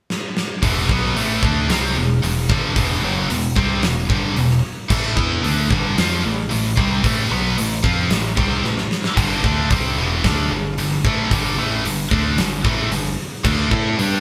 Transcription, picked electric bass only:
0, 0, Header, 1, 2, 480
1, 0, Start_track
1, 0, Key_signature, 1, "minor"
1, 0, Tempo, 534283
1, 566, Time_signature, 4, 2, 24, 8
1, 12758, End_track
2, 0, Start_track
2, 0, Title_t, "Picked electric bass"
2, 0, Program_c, 0, 34
2, 561, Note_on_c, 0, 28, 100
2, 787, Note_off_c, 0, 28, 0
2, 802, Note_on_c, 0, 35, 100
2, 1027, Note_off_c, 0, 35, 0
2, 1038, Note_on_c, 0, 33, 97
2, 1265, Note_off_c, 0, 33, 0
2, 1285, Note_on_c, 0, 38, 92
2, 1509, Note_off_c, 0, 38, 0
2, 1517, Note_on_c, 0, 36, 99
2, 1745, Note_off_c, 0, 36, 0
2, 1762, Note_on_c, 0, 28, 82
2, 1987, Note_off_c, 0, 28, 0
2, 1997, Note_on_c, 0, 28, 89
2, 2224, Note_off_c, 0, 28, 0
2, 2241, Note_on_c, 0, 31, 100
2, 2466, Note_off_c, 0, 31, 0
2, 2477, Note_on_c, 0, 28, 102
2, 2704, Note_off_c, 0, 28, 0
2, 2722, Note_on_c, 0, 30, 92
2, 2947, Note_off_c, 0, 30, 0
2, 2963, Note_on_c, 0, 28, 83
2, 3188, Note_off_c, 0, 28, 0
2, 3201, Note_on_c, 0, 36, 92
2, 3427, Note_off_c, 0, 36, 0
2, 3448, Note_on_c, 0, 28, 82
2, 3670, Note_off_c, 0, 28, 0
2, 3678, Note_on_c, 0, 31, 97
2, 3905, Note_off_c, 0, 31, 0
2, 3922, Note_on_c, 0, 28, 93
2, 4147, Note_off_c, 0, 28, 0
2, 4403, Note_on_c, 0, 33, 101
2, 4627, Note_off_c, 0, 33, 0
2, 4640, Note_on_c, 0, 40, 94
2, 4866, Note_off_c, 0, 40, 0
2, 4894, Note_on_c, 0, 38, 104
2, 5113, Note_off_c, 0, 38, 0
2, 5124, Note_on_c, 0, 31, 95
2, 5348, Note_off_c, 0, 31, 0
2, 5375, Note_on_c, 0, 41, 93
2, 5594, Note_off_c, 0, 41, 0
2, 5619, Note_on_c, 0, 33, 84
2, 5835, Note_off_c, 0, 33, 0
2, 5858, Note_on_c, 0, 33, 89
2, 6075, Note_off_c, 0, 33, 0
2, 6083, Note_on_c, 0, 36, 95
2, 6307, Note_off_c, 0, 36, 0
2, 6322, Note_on_c, 0, 33, 103
2, 6546, Note_off_c, 0, 33, 0
2, 6567, Note_on_c, 0, 35, 95
2, 6789, Note_off_c, 0, 35, 0
2, 6813, Note_on_c, 0, 33, 86
2, 7032, Note_off_c, 0, 33, 0
2, 7039, Note_on_c, 0, 41, 91
2, 7264, Note_off_c, 0, 41, 0
2, 7282, Note_on_c, 0, 33, 79
2, 7506, Note_off_c, 0, 33, 0
2, 7524, Note_on_c, 0, 36, 96
2, 7747, Note_off_c, 0, 36, 0
2, 7761, Note_on_c, 0, 33, 91
2, 7985, Note_off_c, 0, 33, 0
2, 8237, Note_on_c, 0, 31, 104
2, 8462, Note_off_c, 0, 31, 0
2, 8477, Note_on_c, 0, 38, 91
2, 8703, Note_off_c, 0, 38, 0
2, 8719, Note_on_c, 0, 36, 98
2, 8944, Note_off_c, 0, 36, 0
2, 8967, Note_on_c, 0, 28, 96
2, 9188, Note_off_c, 0, 28, 0
2, 9200, Note_on_c, 0, 38, 100
2, 9424, Note_off_c, 0, 38, 0
2, 9441, Note_on_c, 0, 31, 80
2, 9665, Note_off_c, 0, 31, 0
2, 9684, Note_on_c, 0, 31, 89
2, 9906, Note_off_c, 0, 31, 0
2, 9924, Note_on_c, 0, 33, 94
2, 10147, Note_off_c, 0, 33, 0
2, 10162, Note_on_c, 0, 31, 98
2, 10385, Note_off_c, 0, 31, 0
2, 10399, Note_on_c, 0, 33, 97
2, 10624, Note_off_c, 0, 33, 0
2, 10648, Note_on_c, 0, 31, 88
2, 10868, Note_off_c, 0, 31, 0
2, 10882, Note_on_c, 0, 38, 95
2, 11105, Note_off_c, 0, 38, 0
2, 11120, Note_on_c, 0, 31, 86
2, 11344, Note_off_c, 0, 31, 0
2, 11360, Note_on_c, 0, 33, 97
2, 11585, Note_off_c, 0, 33, 0
2, 11603, Note_on_c, 0, 31, 89
2, 11826, Note_off_c, 0, 31, 0
2, 12077, Note_on_c, 0, 38, 96
2, 12303, Note_off_c, 0, 38, 0
2, 12319, Note_on_c, 0, 45, 100
2, 12544, Note_off_c, 0, 45, 0
2, 12566, Note_on_c, 0, 43, 104
2, 12758, Note_off_c, 0, 43, 0
2, 12758, End_track
0, 0, End_of_file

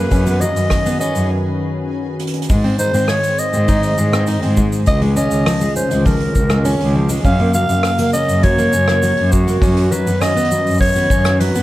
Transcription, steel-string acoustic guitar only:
0, 0, Header, 1, 2, 480
1, 0, Start_track
1, 0, Tempo, 594059
1, 96, Time_signature, 4, 2, 24, 8
1, 9394, End_track
2, 0, Start_track
2, 0, Title_t, "Steel-string acoustic guitar"
2, 0, Program_c, 0, 25
2, 0, Note_on_c, 0, 58, 64
2, 84, Note_off_c, 0, 58, 0
2, 95, Note_on_c, 0, 61, 80
2, 204, Note_off_c, 0, 61, 0
2, 216, Note_on_c, 0, 59, 77
2, 324, Note_off_c, 0, 59, 0
2, 336, Note_on_c, 0, 54, 72
2, 404, Note_off_c, 0, 54, 0
2, 696, Note_on_c, 0, 59, 77
2, 804, Note_off_c, 0, 59, 0
2, 815, Note_on_c, 0, 61, 90
2, 1043, Note_off_c, 0, 61, 0
2, 2016, Note_on_c, 0, 56, 77
2, 2124, Note_off_c, 0, 56, 0
2, 2134, Note_on_c, 0, 60, 70
2, 2243, Note_off_c, 0, 60, 0
2, 2253, Note_on_c, 0, 63, 70
2, 2363, Note_off_c, 0, 63, 0
2, 2378, Note_on_c, 0, 60, 71
2, 2485, Note_off_c, 0, 60, 0
2, 2496, Note_on_c, 0, 56, 77
2, 2564, Note_off_c, 0, 56, 0
2, 2855, Note_on_c, 0, 60, 77
2, 2964, Note_off_c, 0, 60, 0
2, 2976, Note_on_c, 0, 63, 93
2, 3204, Note_off_c, 0, 63, 0
2, 3215, Note_on_c, 0, 56, 71
2, 3324, Note_off_c, 0, 56, 0
2, 3333, Note_on_c, 0, 60, 76
2, 3442, Note_off_c, 0, 60, 0
2, 3454, Note_on_c, 0, 63, 76
2, 3563, Note_off_c, 0, 63, 0
2, 3575, Note_on_c, 0, 60, 74
2, 3684, Note_off_c, 0, 60, 0
2, 3694, Note_on_c, 0, 56, 67
2, 3763, Note_off_c, 0, 56, 0
2, 4053, Note_on_c, 0, 56, 75
2, 4162, Note_off_c, 0, 56, 0
2, 4173, Note_on_c, 0, 61, 94
2, 4402, Note_off_c, 0, 61, 0
2, 4413, Note_on_c, 0, 53, 82
2, 4522, Note_off_c, 0, 53, 0
2, 4534, Note_on_c, 0, 56, 81
2, 4643, Note_off_c, 0, 56, 0
2, 4655, Note_on_c, 0, 61, 64
2, 4764, Note_off_c, 0, 61, 0
2, 4775, Note_on_c, 0, 56, 76
2, 4883, Note_off_c, 0, 56, 0
2, 4892, Note_on_c, 0, 53, 80
2, 4962, Note_off_c, 0, 53, 0
2, 5253, Note_on_c, 0, 56, 74
2, 5362, Note_off_c, 0, 56, 0
2, 5373, Note_on_c, 0, 61, 96
2, 5603, Note_off_c, 0, 61, 0
2, 5617, Note_on_c, 0, 53, 68
2, 5725, Note_off_c, 0, 53, 0
2, 5733, Note_on_c, 0, 56, 74
2, 5842, Note_off_c, 0, 56, 0
2, 5856, Note_on_c, 0, 61, 80
2, 5964, Note_off_c, 0, 61, 0
2, 5977, Note_on_c, 0, 58, 73
2, 6085, Note_off_c, 0, 58, 0
2, 6094, Note_on_c, 0, 54, 73
2, 6164, Note_off_c, 0, 54, 0
2, 6454, Note_on_c, 0, 58, 79
2, 6563, Note_off_c, 0, 58, 0
2, 6575, Note_on_c, 0, 61, 90
2, 6803, Note_off_c, 0, 61, 0
2, 6814, Note_on_c, 0, 54, 76
2, 6923, Note_off_c, 0, 54, 0
2, 6934, Note_on_c, 0, 58, 73
2, 7043, Note_off_c, 0, 58, 0
2, 7055, Note_on_c, 0, 61, 69
2, 7163, Note_off_c, 0, 61, 0
2, 7175, Note_on_c, 0, 58, 74
2, 7283, Note_off_c, 0, 58, 0
2, 7293, Note_on_c, 0, 54, 75
2, 7363, Note_off_c, 0, 54, 0
2, 7654, Note_on_c, 0, 58, 67
2, 7763, Note_off_c, 0, 58, 0
2, 7773, Note_on_c, 0, 61, 94
2, 8002, Note_off_c, 0, 61, 0
2, 8015, Note_on_c, 0, 54, 76
2, 8123, Note_off_c, 0, 54, 0
2, 8134, Note_on_c, 0, 59, 67
2, 8243, Note_off_c, 0, 59, 0
2, 8252, Note_on_c, 0, 61, 77
2, 8362, Note_off_c, 0, 61, 0
2, 8373, Note_on_c, 0, 59, 82
2, 8482, Note_off_c, 0, 59, 0
2, 8492, Note_on_c, 0, 54, 64
2, 8562, Note_off_c, 0, 54, 0
2, 8855, Note_on_c, 0, 59, 72
2, 8964, Note_off_c, 0, 59, 0
2, 8974, Note_on_c, 0, 61, 91
2, 9203, Note_off_c, 0, 61, 0
2, 9215, Note_on_c, 0, 54, 77
2, 9324, Note_off_c, 0, 54, 0
2, 9336, Note_on_c, 0, 59, 77
2, 9394, Note_off_c, 0, 59, 0
2, 9394, End_track
0, 0, End_of_file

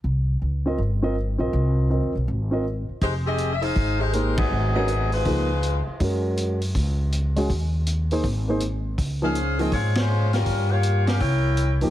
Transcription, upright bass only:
0, 0, Header, 1, 3, 480
1, 0, Start_track
1, 0, Key_signature, -4, "minor"
1, 0, Tempo, 372208
1, 49, Time_signature, 4, 2, 24, 8
1, 15348, End_track
2, 0, Start_track
2, 0, Title_t, "Upright bass"
2, 0, Program_c, 0, 32
2, 50, Note_on_c, 0, 36, 73
2, 497, Note_off_c, 0, 36, 0
2, 536, Note_on_c, 0, 37, 61
2, 980, Note_off_c, 0, 37, 0
2, 1010, Note_on_c, 0, 31, 77
2, 1751, Note_off_c, 0, 31, 0
2, 1796, Note_on_c, 0, 34, 61
2, 1956, Note_off_c, 0, 34, 0
2, 1975, Note_on_c, 0, 36, 83
2, 2569, Note_off_c, 0, 36, 0
2, 2774, Note_on_c, 0, 35, 65
2, 2922, Note_off_c, 0, 35, 0
2, 2939, Note_on_c, 0, 32, 81
2, 3676, Note_off_c, 0, 32, 0
2, 3887, Note_on_c, 0, 29, 75
2, 4803, Note_off_c, 0, 29, 0
2, 4848, Note_on_c, 0, 32, 76
2, 5765, Note_off_c, 0, 32, 0
2, 5814, Note_on_c, 0, 32, 80
2, 6728, Note_off_c, 0, 32, 0
2, 6780, Note_on_c, 0, 37, 85
2, 7519, Note_off_c, 0, 37, 0
2, 7737, Note_on_c, 0, 42, 83
2, 8650, Note_off_c, 0, 42, 0
2, 8702, Note_on_c, 0, 37, 82
2, 9613, Note_off_c, 0, 37, 0
2, 9667, Note_on_c, 0, 39, 79
2, 10575, Note_off_c, 0, 39, 0
2, 10621, Note_on_c, 0, 32, 80
2, 11532, Note_off_c, 0, 32, 0
2, 11583, Note_on_c, 0, 37, 81
2, 12492, Note_off_c, 0, 37, 0
2, 12534, Note_on_c, 0, 44, 82
2, 13446, Note_off_c, 0, 44, 0
2, 13498, Note_on_c, 0, 43, 80
2, 14407, Note_off_c, 0, 43, 0
2, 14453, Note_on_c, 0, 36, 81
2, 15191, Note_off_c, 0, 36, 0
2, 15233, Note_on_c, 0, 40, 68
2, 15348, Note_off_c, 0, 40, 0
2, 15348, End_track
3, 0, Start_track
3, 0, Title_t, "Muted upright bass strokes"
3, 3725, Note_on_c, 9, 29, 34
3, 3854, Note_off_c, 9, 29, 0
3, 7572, Note_on_c, 9, 29, 36
3, 7701, Note_off_c, 9, 29, 0
3, 15348, End_track
0, 0, End_of_file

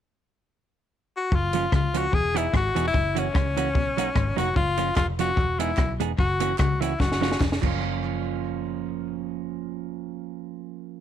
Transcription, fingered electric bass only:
0, 0, Header, 1, 2, 480
1, 0, Start_track
1, 0, Key_signature, 6, "major"
1, 0, Tempo, 405132
1, 1565, Time_signature, 4, 2, 24, 8
1, 13038, End_track
2, 0, Start_track
2, 0, Title_t, "Fingered electric bass"
2, 0, Program_c, 0, 33
2, 1563, Note_on_c, 0, 30, 96
2, 1971, Note_off_c, 0, 30, 0
2, 2044, Note_on_c, 0, 37, 76
2, 2452, Note_off_c, 0, 37, 0
2, 2525, Note_on_c, 0, 28, 89
2, 2932, Note_off_c, 0, 28, 0
2, 3004, Note_on_c, 0, 32, 97
2, 3228, Note_off_c, 0, 32, 0
2, 3271, Note_on_c, 0, 28, 86
2, 3453, Note_off_c, 0, 28, 0
2, 3487, Note_on_c, 0, 30, 94
2, 3894, Note_off_c, 0, 30, 0
2, 3968, Note_on_c, 0, 37, 77
2, 4446, Note_off_c, 0, 37, 0
2, 4446, Note_on_c, 0, 35, 87
2, 4854, Note_off_c, 0, 35, 0
2, 4923, Note_on_c, 0, 32, 97
2, 5149, Note_off_c, 0, 32, 0
2, 5184, Note_on_c, 0, 29, 94
2, 5370, Note_off_c, 0, 29, 0
2, 5406, Note_on_c, 0, 30, 96
2, 5815, Note_off_c, 0, 30, 0
2, 5884, Note_on_c, 0, 29, 89
2, 6294, Note_off_c, 0, 29, 0
2, 6366, Note_on_c, 0, 28, 90
2, 6776, Note_off_c, 0, 28, 0
2, 6845, Note_on_c, 0, 35, 94
2, 7072, Note_off_c, 0, 35, 0
2, 7098, Note_on_c, 0, 28, 90
2, 7289, Note_off_c, 0, 28, 0
2, 7330, Note_on_c, 0, 30, 102
2, 7739, Note_off_c, 0, 30, 0
2, 7812, Note_on_c, 0, 37, 89
2, 8221, Note_off_c, 0, 37, 0
2, 8292, Note_on_c, 0, 30, 94
2, 8701, Note_off_c, 0, 30, 0
2, 8777, Note_on_c, 0, 29, 98
2, 9000, Note_off_c, 0, 29, 0
2, 9043, Note_on_c, 0, 30, 95
2, 13038, Note_off_c, 0, 30, 0
2, 13038, End_track
0, 0, End_of_file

